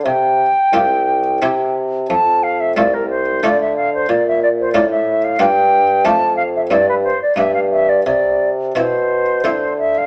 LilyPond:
<<
  \new Staff \with { instrumentName = "Flute" } { \time 3/4 \key g \dorian \tempo 4 = 89 g''2~ g''8 r8 | a''8 f''16 e''16 d''16 bes'16 c''8 d''16 e''16 f''16 c''16 | d''16 e''16 d''16 c''16 d''16 e''8 f''16 g''4 | \key c \major a''8 f''16 e''16 d''16 b'16 c''16 d''16 e''16 f''16 e''16 d''16 |
d''8. r16 c''4. e''16 f''16 | }
  \new Staff \with { instrumentName = "Harpsichord" } { \time 3/4 \key g \dorian r4 <c' f' g'>4 <c' e' g'>4 | r4 <a c' f'>4 <a d' f'>4 | r4 <bes d' f'>4 <bes d' f'>4 | \key c \major <a d' f'>4 <c' e'>4 <b d'>4 |
r4 <c' e'>4 <c' e'>4 | }
  \new Staff \with { instrumentName = "Harpsichord" } { \clef bass \time 3/4 \key g \dorian c8 r8 c,4 c4 | f,4 c,4 d4 | bes,4 a,4 g,4 | \key c \major f,4 g,8 r8 g,4 |
c4 b,4 d4 | }
  \new Staff \with { instrumentName = "Bassoon" } { \clef bass \time 3/4 \key g \dorian c8 r8 c,4 c4 | f,4 c,4 d4 | bes,4 a,4 g,4 | \key c \major f,4 g,8 r8 g,4 |
c4 b,4 d4 | }
>>